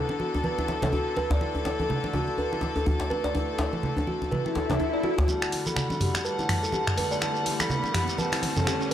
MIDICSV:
0, 0, Header, 1, 10, 480
1, 0, Start_track
1, 0, Key_signature, 1, "minor"
1, 0, Tempo, 483871
1, 1403, Time_signature, 4, 2, 24, 8
1, 8866, End_track
2, 0, Start_track
2, 0, Title_t, "Flute"
2, 0, Program_c, 0, 73
2, 5241, Note_on_c, 0, 81, 107
2, 5618, Note_on_c, 0, 83, 110
2, 5633, Note_off_c, 0, 81, 0
2, 6135, Note_off_c, 0, 83, 0
2, 6141, Note_on_c, 0, 83, 78
2, 6198, Note_on_c, 0, 81, 114
2, 6213, Note_off_c, 0, 83, 0
2, 7151, Note_off_c, 0, 81, 0
2, 7157, Note_on_c, 0, 81, 108
2, 7538, Note_on_c, 0, 83, 114
2, 7553, Note_off_c, 0, 81, 0
2, 8120, Note_on_c, 0, 81, 107
2, 8134, Note_off_c, 0, 83, 0
2, 8866, Note_off_c, 0, 81, 0
2, 8866, End_track
3, 0, Start_track
3, 0, Title_t, "Kalimba"
3, 0, Program_c, 1, 108
3, 100, Note_on_c, 1, 62, 72
3, 197, Note_off_c, 1, 62, 0
3, 200, Note_on_c, 1, 66, 73
3, 327, Note_off_c, 1, 66, 0
3, 440, Note_on_c, 1, 71, 78
3, 516, Note_off_c, 1, 71, 0
3, 582, Note_on_c, 1, 64, 74
3, 673, Note_off_c, 1, 64, 0
3, 821, Note_on_c, 1, 69, 75
3, 918, Note_off_c, 1, 69, 0
3, 922, Note_on_c, 1, 66, 74
3, 1048, Note_off_c, 1, 66, 0
3, 1161, Note_on_c, 1, 71, 104
3, 1294, Note_off_c, 1, 71, 0
3, 1300, Note_on_c, 1, 74, 98
3, 1356, Note_off_c, 1, 74, 0
3, 1402, Note_on_c, 1, 64, 78
3, 1478, Note_off_c, 1, 64, 0
3, 1643, Note_on_c, 1, 64, 74
3, 1775, Note_off_c, 1, 64, 0
3, 1783, Note_on_c, 1, 69, 77
3, 1878, Note_off_c, 1, 69, 0
3, 2023, Note_on_c, 1, 62, 76
3, 2118, Note_off_c, 1, 62, 0
3, 2124, Note_on_c, 1, 66, 74
3, 2249, Note_off_c, 1, 66, 0
3, 2363, Note_on_c, 1, 71, 81
3, 2438, Note_off_c, 1, 71, 0
3, 2501, Note_on_c, 1, 64, 75
3, 2592, Note_off_c, 1, 64, 0
3, 2740, Note_on_c, 1, 69, 77
3, 2837, Note_off_c, 1, 69, 0
3, 2838, Note_on_c, 1, 66, 75
3, 2966, Note_off_c, 1, 66, 0
3, 3078, Note_on_c, 1, 71, 104
3, 3213, Note_off_c, 1, 71, 0
3, 3218, Note_on_c, 1, 74, 101
3, 3274, Note_off_c, 1, 74, 0
3, 3319, Note_on_c, 1, 64, 76
3, 3396, Note_off_c, 1, 64, 0
3, 3560, Note_on_c, 1, 64, 70
3, 3694, Note_off_c, 1, 64, 0
3, 3699, Note_on_c, 1, 69, 75
3, 3796, Note_off_c, 1, 69, 0
3, 3942, Note_on_c, 1, 62, 75
3, 4038, Note_off_c, 1, 62, 0
3, 4041, Note_on_c, 1, 66, 71
3, 4167, Note_off_c, 1, 66, 0
3, 4280, Note_on_c, 1, 71, 80
3, 4357, Note_off_c, 1, 71, 0
3, 4420, Note_on_c, 1, 64, 74
3, 4512, Note_off_c, 1, 64, 0
3, 4522, Note_on_c, 1, 69, 75
3, 4597, Note_off_c, 1, 69, 0
3, 4658, Note_on_c, 1, 62, 97
3, 4751, Note_off_c, 1, 62, 0
3, 4758, Note_on_c, 1, 64, 91
3, 4892, Note_off_c, 1, 64, 0
3, 4896, Note_on_c, 1, 74, 76
3, 4954, Note_off_c, 1, 74, 0
3, 5000, Note_on_c, 1, 66, 100
3, 5126, Note_off_c, 1, 66, 0
3, 5138, Note_on_c, 1, 66, 102
3, 5231, Note_off_c, 1, 66, 0
3, 5241, Note_on_c, 1, 64, 78
3, 5317, Note_off_c, 1, 64, 0
3, 5478, Note_on_c, 1, 64, 74
3, 5613, Note_off_c, 1, 64, 0
3, 5619, Note_on_c, 1, 69, 72
3, 5716, Note_off_c, 1, 69, 0
3, 5857, Note_on_c, 1, 62, 71
3, 5955, Note_off_c, 1, 62, 0
3, 5959, Note_on_c, 1, 67, 74
3, 6086, Note_off_c, 1, 67, 0
3, 6196, Note_on_c, 1, 71, 82
3, 6275, Note_off_c, 1, 71, 0
3, 6338, Note_on_c, 1, 64, 78
3, 6431, Note_off_c, 1, 64, 0
3, 6574, Note_on_c, 1, 69, 76
3, 6674, Note_off_c, 1, 69, 0
3, 6677, Note_on_c, 1, 67, 79
3, 6805, Note_off_c, 1, 67, 0
3, 6919, Note_on_c, 1, 71, 104
3, 7053, Note_off_c, 1, 71, 0
3, 7058, Note_on_c, 1, 74, 101
3, 7114, Note_off_c, 1, 74, 0
3, 7158, Note_on_c, 1, 64, 79
3, 7236, Note_off_c, 1, 64, 0
3, 7398, Note_on_c, 1, 64, 76
3, 7533, Note_off_c, 1, 64, 0
3, 7537, Note_on_c, 1, 69, 77
3, 7636, Note_off_c, 1, 69, 0
3, 7776, Note_on_c, 1, 62, 76
3, 7875, Note_off_c, 1, 62, 0
3, 7878, Note_on_c, 1, 67, 72
3, 8005, Note_off_c, 1, 67, 0
3, 8117, Note_on_c, 1, 71, 81
3, 8195, Note_off_c, 1, 71, 0
3, 8259, Note_on_c, 1, 64, 80
3, 8351, Note_off_c, 1, 64, 0
3, 8497, Note_on_c, 1, 69, 75
3, 8595, Note_off_c, 1, 69, 0
3, 8598, Note_on_c, 1, 67, 82
3, 8726, Note_off_c, 1, 67, 0
3, 8866, End_track
4, 0, Start_track
4, 0, Title_t, "String section"
4, 0, Program_c, 2, 48
4, 0, Note_on_c, 2, 50, 76
4, 0, Note_on_c, 2, 59, 72
4, 0, Note_on_c, 2, 69, 86
4, 1365, Note_off_c, 2, 59, 0
4, 1405, Note_on_c, 2, 57, 72
4, 5202, Note_off_c, 2, 69, 0
4, 5203, Note_off_c, 2, 50, 0
4, 5205, Note_off_c, 2, 57, 0
4, 5241, Note_on_c, 2, 55, 72
4, 5243, Note_on_c, 2, 50, 79
4, 5244, Note_on_c, 2, 57, 73
4, 5244, Note_on_c, 2, 78, 86
4, 8866, Note_off_c, 2, 50, 0
4, 8866, Note_off_c, 2, 55, 0
4, 8866, Note_off_c, 2, 57, 0
4, 8866, Note_off_c, 2, 78, 0
4, 8866, End_track
5, 0, Start_track
5, 0, Title_t, "Analog synth bass"
5, 0, Program_c, 3, 38
5, 5242, Note_on_c, 3, 40, 97
5, 5558, Note_off_c, 3, 40, 0
5, 5620, Note_on_c, 3, 40, 80
5, 6156, Note_off_c, 3, 40, 0
5, 6340, Note_on_c, 3, 45, 82
5, 6579, Note_on_c, 3, 35, 87
5, 6594, Note_off_c, 3, 45, 0
5, 6653, Note_off_c, 3, 35, 0
5, 7060, Note_on_c, 3, 35, 102
5, 7478, Note_off_c, 3, 35, 0
5, 7540, Note_on_c, 3, 40, 84
5, 8076, Note_off_c, 3, 40, 0
5, 8121, Note_on_c, 3, 35, 105
5, 8222, Note_off_c, 3, 35, 0
5, 8362, Note_on_c, 3, 40, 99
5, 8462, Note_off_c, 3, 40, 0
5, 8502, Note_on_c, 3, 40, 82
5, 8797, Note_off_c, 3, 40, 0
5, 8866, End_track
6, 0, Start_track
6, 0, Title_t, "Riser"
6, 0, Program_c, 4, 103
6, 5240, Note_on_c, 4, 60, 83
6, 8866, Note_off_c, 4, 60, 0
6, 8866, End_track
7, 0, Start_track
7, 0, Title_t, "Swell"
7, 0, Program_c, 5, 103
7, 4282, Note_on_c, 5, 60, 67
7, 5243, Note_off_c, 5, 60, 0
7, 8866, End_track
8, 0, Start_track
8, 0, Title_t, "Djembe"
8, 343, Note_on_c, 9, 63, 86
8, 442, Note_off_c, 9, 63, 0
8, 577, Note_on_c, 9, 63, 61
8, 677, Note_off_c, 9, 63, 0
8, 677, Note_on_c, 9, 62, 74
8, 776, Note_off_c, 9, 62, 0
8, 821, Note_on_c, 9, 62, 106
8, 917, Note_on_c, 9, 63, 78
8, 920, Note_off_c, 9, 62, 0
8, 1016, Note_off_c, 9, 63, 0
8, 1160, Note_on_c, 9, 63, 55
8, 1259, Note_off_c, 9, 63, 0
8, 1295, Note_on_c, 9, 64, 86
8, 1297, Note_on_c, 9, 62, 97
8, 1394, Note_off_c, 9, 64, 0
8, 1396, Note_off_c, 9, 62, 0
8, 1535, Note_on_c, 9, 63, 76
8, 1635, Note_off_c, 9, 63, 0
8, 1638, Note_on_c, 9, 62, 105
8, 1738, Note_off_c, 9, 62, 0
8, 1779, Note_on_c, 9, 63, 59
8, 1879, Note_off_c, 9, 63, 0
8, 2121, Note_on_c, 9, 63, 77
8, 2220, Note_off_c, 9, 63, 0
8, 2359, Note_on_c, 9, 63, 55
8, 2458, Note_off_c, 9, 63, 0
8, 2591, Note_on_c, 9, 62, 75
8, 2690, Note_off_c, 9, 62, 0
8, 2736, Note_on_c, 9, 63, 80
8, 2835, Note_off_c, 9, 63, 0
8, 2843, Note_on_c, 9, 64, 86
8, 2942, Note_off_c, 9, 64, 0
8, 2973, Note_on_c, 9, 62, 109
8, 2985, Note_on_c, 9, 63, 65
8, 3072, Note_off_c, 9, 62, 0
8, 3084, Note_off_c, 9, 63, 0
8, 3216, Note_on_c, 9, 62, 96
8, 3315, Note_off_c, 9, 62, 0
8, 3324, Note_on_c, 9, 63, 85
8, 3423, Note_off_c, 9, 63, 0
8, 3556, Note_on_c, 9, 62, 110
8, 3558, Note_on_c, 9, 63, 57
8, 3655, Note_off_c, 9, 62, 0
8, 3657, Note_off_c, 9, 63, 0
8, 3933, Note_on_c, 9, 63, 85
8, 4032, Note_off_c, 9, 63, 0
8, 4183, Note_on_c, 9, 63, 55
8, 4282, Note_off_c, 9, 63, 0
8, 4516, Note_on_c, 9, 62, 87
8, 4522, Note_on_c, 9, 63, 77
8, 4615, Note_off_c, 9, 62, 0
8, 4621, Note_off_c, 9, 63, 0
8, 4667, Note_on_c, 9, 62, 102
8, 4759, Note_on_c, 9, 63, 68
8, 4767, Note_off_c, 9, 62, 0
8, 4858, Note_off_c, 9, 63, 0
8, 5142, Note_on_c, 9, 62, 113
8, 5143, Note_on_c, 9, 64, 85
8, 5144, Note_on_c, 9, 63, 81
8, 5242, Note_off_c, 9, 62, 0
8, 5242, Note_off_c, 9, 64, 0
8, 5243, Note_off_c, 9, 63, 0
8, 8866, End_track
9, 0, Start_track
9, 0, Title_t, "Shekere"
9, 5244, Note_on_c, 9, 82, 64
9, 5343, Note_off_c, 9, 82, 0
9, 5384, Note_on_c, 9, 82, 39
9, 5483, Note_off_c, 9, 82, 0
9, 5618, Note_on_c, 9, 82, 76
9, 5717, Note_off_c, 9, 82, 0
9, 5729, Note_on_c, 9, 82, 59
9, 5828, Note_off_c, 9, 82, 0
9, 5861, Note_on_c, 9, 82, 38
9, 5961, Note_off_c, 9, 82, 0
9, 6099, Note_on_c, 9, 82, 75
9, 6198, Note_off_c, 9, 82, 0
9, 6201, Note_on_c, 9, 82, 69
9, 6300, Note_off_c, 9, 82, 0
9, 6340, Note_on_c, 9, 82, 38
9, 6439, Note_off_c, 9, 82, 0
9, 6583, Note_on_c, 9, 82, 79
9, 6677, Note_off_c, 9, 82, 0
9, 6677, Note_on_c, 9, 82, 65
9, 6776, Note_off_c, 9, 82, 0
9, 6823, Note_on_c, 9, 82, 36
9, 6922, Note_off_c, 9, 82, 0
9, 7059, Note_on_c, 9, 82, 78
9, 7156, Note_off_c, 9, 82, 0
9, 7156, Note_on_c, 9, 82, 70
9, 7255, Note_off_c, 9, 82, 0
9, 7298, Note_on_c, 9, 82, 43
9, 7397, Note_off_c, 9, 82, 0
9, 7538, Note_on_c, 9, 82, 89
9, 7637, Note_off_c, 9, 82, 0
9, 7641, Note_on_c, 9, 82, 71
9, 7741, Note_off_c, 9, 82, 0
9, 7787, Note_on_c, 9, 82, 37
9, 7886, Note_off_c, 9, 82, 0
9, 8026, Note_on_c, 9, 82, 76
9, 8121, Note_off_c, 9, 82, 0
9, 8121, Note_on_c, 9, 82, 74
9, 8220, Note_off_c, 9, 82, 0
9, 8266, Note_on_c, 9, 82, 39
9, 8365, Note_off_c, 9, 82, 0
9, 8495, Note_on_c, 9, 82, 72
9, 8594, Note_off_c, 9, 82, 0
9, 8607, Note_on_c, 9, 82, 68
9, 8706, Note_off_c, 9, 82, 0
9, 8739, Note_on_c, 9, 82, 39
9, 8838, Note_off_c, 9, 82, 0
9, 8866, End_track
10, 0, Start_track
10, 0, Title_t, "Drums"
10, 89, Note_on_c, 9, 62, 53
10, 189, Note_off_c, 9, 62, 0
10, 196, Note_on_c, 9, 63, 63
10, 295, Note_off_c, 9, 63, 0
10, 340, Note_on_c, 9, 62, 34
10, 436, Note_on_c, 9, 63, 92
10, 440, Note_off_c, 9, 62, 0
10, 535, Note_off_c, 9, 63, 0
10, 582, Note_on_c, 9, 62, 53
10, 681, Note_off_c, 9, 62, 0
10, 682, Note_on_c, 9, 63, 62
10, 782, Note_off_c, 9, 63, 0
10, 817, Note_on_c, 9, 63, 99
10, 818, Note_on_c, 9, 64, 96
10, 916, Note_off_c, 9, 63, 0
10, 917, Note_off_c, 9, 64, 0
10, 920, Note_on_c, 9, 62, 38
10, 1019, Note_off_c, 9, 62, 0
10, 1156, Note_on_c, 9, 62, 51
10, 1255, Note_off_c, 9, 62, 0
10, 1398, Note_on_c, 9, 62, 55
10, 1497, Note_off_c, 9, 62, 0
10, 1647, Note_on_c, 9, 62, 38
10, 1747, Note_off_c, 9, 62, 0
10, 1783, Note_on_c, 9, 63, 64
10, 1882, Note_off_c, 9, 63, 0
10, 1885, Note_on_c, 9, 64, 83
10, 1985, Note_off_c, 9, 64, 0
10, 2021, Note_on_c, 9, 63, 55
10, 2023, Note_on_c, 9, 62, 54
10, 2117, Note_on_c, 9, 64, 81
10, 2120, Note_off_c, 9, 63, 0
10, 2122, Note_off_c, 9, 62, 0
10, 2129, Note_on_c, 9, 63, 55
10, 2217, Note_off_c, 9, 64, 0
10, 2228, Note_off_c, 9, 63, 0
10, 2259, Note_on_c, 9, 62, 35
10, 2358, Note_off_c, 9, 62, 0
10, 2507, Note_on_c, 9, 62, 52
10, 2606, Note_off_c, 9, 62, 0
10, 2607, Note_on_c, 9, 63, 58
10, 2706, Note_off_c, 9, 63, 0
10, 2839, Note_on_c, 9, 62, 43
10, 2840, Note_on_c, 9, 63, 88
10, 2938, Note_off_c, 9, 62, 0
10, 2939, Note_off_c, 9, 63, 0
10, 3083, Note_on_c, 9, 63, 58
10, 3088, Note_on_c, 9, 62, 52
10, 3183, Note_off_c, 9, 63, 0
10, 3187, Note_off_c, 9, 62, 0
10, 3320, Note_on_c, 9, 62, 59
10, 3419, Note_off_c, 9, 62, 0
10, 3562, Note_on_c, 9, 62, 39
10, 3661, Note_off_c, 9, 62, 0
10, 3700, Note_on_c, 9, 63, 65
10, 3799, Note_off_c, 9, 63, 0
10, 3802, Note_on_c, 9, 64, 77
10, 3901, Note_off_c, 9, 64, 0
10, 3948, Note_on_c, 9, 62, 55
10, 4040, Note_on_c, 9, 63, 63
10, 4047, Note_off_c, 9, 62, 0
10, 4139, Note_off_c, 9, 63, 0
10, 4185, Note_on_c, 9, 62, 44
10, 4284, Note_off_c, 9, 62, 0
10, 4287, Note_on_c, 9, 64, 80
10, 4289, Note_on_c, 9, 63, 80
10, 4386, Note_off_c, 9, 64, 0
10, 4388, Note_off_c, 9, 63, 0
10, 4423, Note_on_c, 9, 62, 56
10, 4522, Note_off_c, 9, 62, 0
10, 4525, Note_on_c, 9, 63, 60
10, 4624, Note_off_c, 9, 63, 0
10, 4660, Note_on_c, 9, 63, 95
10, 4660, Note_on_c, 9, 64, 99
10, 4759, Note_off_c, 9, 63, 0
10, 4759, Note_off_c, 9, 64, 0
10, 4762, Note_on_c, 9, 62, 38
10, 4861, Note_off_c, 9, 62, 0
10, 4994, Note_on_c, 9, 62, 53
10, 5093, Note_off_c, 9, 62, 0
10, 5238, Note_on_c, 9, 62, 56
10, 5337, Note_off_c, 9, 62, 0
10, 5379, Note_on_c, 9, 26, 92
10, 5478, Note_off_c, 9, 26, 0
10, 5480, Note_on_c, 9, 46, 99
10, 5487, Note_on_c, 9, 62, 39
10, 5579, Note_off_c, 9, 46, 0
10, 5586, Note_off_c, 9, 62, 0
10, 5618, Note_on_c, 9, 63, 63
10, 5716, Note_on_c, 9, 64, 89
10, 5718, Note_off_c, 9, 63, 0
10, 5718, Note_on_c, 9, 26, 73
10, 5816, Note_off_c, 9, 64, 0
10, 5818, Note_off_c, 9, 26, 0
10, 5854, Note_on_c, 9, 63, 57
10, 5855, Note_on_c, 9, 62, 55
10, 5953, Note_off_c, 9, 63, 0
10, 5954, Note_off_c, 9, 62, 0
10, 5958, Note_on_c, 9, 64, 75
10, 5960, Note_on_c, 9, 45, 88
10, 5960, Note_on_c, 9, 46, 85
10, 5960, Note_on_c, 9, 63, 63
10, 6057, Note_off_c, 9, 64, 0
10, 6059, Note_off_c, 9, 45, 0
10, 6059, Note_off_c, 9, 46, 0
10, 6059, Note_off_c, 9, 63, 0
10, 6099, Note_on_c, 9, 26, 92
10, 6103, Note_on_c, 9, 62, 44
10, 6198, Note_off_c, 9, 26, 0
10, 6202, Note_off_c, 9, 62, 0
10, 6339, Note_on_c, 9, 62, 52
10, 6438, Note_off_c, 9, 62, 0
10, 6439, Note_on_c, 9, 26, 75
10, 6439, Note_on_c, 9, 45, 93
10, 6439, Note_on_c, 9, 46, 93
10, 6439, Note_on_c, 9, 63, 70
10, 6538, Note_off_c, 9, 63, 0
10, 6539, Note_off_c, 9, 26, 0
10, 6539, Note_off_c, 9, 45, 0
10, 6539, Note_off_c, 9, 46, 0
10, 6671, Note_on_c, 9, 63, 95
10, 6681, Note_on_c, 9, 62, 42
10, 6770, Note_off_c, 9, 63, 0
10, 6780, Note_off_c, 9, 62, 0
10, 6819, Note_on_c, 9, 26, 92
10, 6819, Note_on_c, 9, 45, 95
10, 6918, Note_off_c, 9, 26, 0
10, 6918, Note_off_c, 9, 45, 0
10, 6920, Note_on_c, 9, 46, 91
10, 6923, Note_on_c, 9, 62, 53
10, 6925, Note_on_c, 9, 63, 65
10, 7019, Note_off_c, 9, 46, 0
10, 7022, Note_off_c, 9, 62, 0
10, 7024, Note_off_c, 9, 63, 0
10, 7159, Note_on_c, 9, 62, 50
10, 7160, Note_on_c, 9, 26, 80
10, 7258, Note_off_c, 9, 62, 0
10, 7259, Note_off_c, 9, 26, 0
10, 7400, Note_on_c, 9, 46, 96
10, 7406, Note_on_c, 9, 62, 39
10, 7500, Note_off_c, 9, 46, 0
10, 7506, Note_off_c, 9, 62, 0
10, 7539, Note_on_c, 9, 63, 64
10, 7540, Note_on_c, 9, 26, 94
10, 7637, Note_on_c, 9, 64, 93
10, 7638, Note_off_c, 9, 63, 0
10, 7639, Note_off_c, 9, 26, 0
10, 7736, Note_off_c, 9, 64, 0
10, 7774, Note_on_c, 9, 62, 51
10, 7873, Note_off_c, 9, 62, 0
10, 7880, Note_on_c, 9, 63, 71
10, 7881, Note_on_c, 9, 26, 79
10, 7881, Note_on_c, 9, 45, 82
10, 7881, Note_on_c, 9, 46, 90
10, 7979, Note_off_c, 9, 63, 0
10, 7980, Note_off_c, 9, 26, 0
10, 7980, Note_off_c, 9, 45, 0
10, 7980, Note_off_c, 9, 46, 0
10, 8012, Note_on_c, 9, 62, 41
10, 8111, Note_off_c, 9, 62, 0
10, 8119, Note_on_c, 9, 63, 99
10, 8218, Note_off_c, 9, 63, 0
10, 8254, Note_on_c, 9, 62, 52
10, 8261, Note_on_c, 9, 26, 91
10, 8261, Note_on_c, 9, 46, 52
10, 8354, Note_off_c, 9, 62, 0
10, 8358, Note_on_c, 9, 63, 71
10, 8360, Note_off_c, 9, 26, 0
10, 8360, Note_off_c, 9, 46, 0
10, 8361, Note_on_c, 9, 46, 93
10, 8458, Note_off_c, 9, 63, 0
10, 8460, Note_off_c, 9, 46, 0
10, 8498, Note_on_c, 9, 63, 110
10, 8500, Note_on_c, 9, 45, 80
10, 8503, Note_on_c, 9, 64, 102
10, 8597, Note_off_c, 9, 63, 0
10, 8599, Note_off_c, 9, 45, 0
10, 8601, Note_on_c, 9, 26, 79
10, 8602, Note_off_c, 9, 64, 0
10, 8603, Note_on_c, 9, 62, 41
10, 8700, Note_off_c, 9, 26, 0
10, 8702, Note_off_c, 9, 62, 0
10, 8866, End_track
0, 0, End_of_file